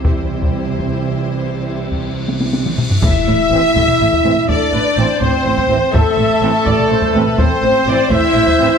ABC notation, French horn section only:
X:1
M:12/8
L:1/8
Q:3/8=83
K:C
V:1 name="French horn section"
[CG]8- [CG]3 z | [K:Am] E6 D3 C3 | A,6 C3 E3 |]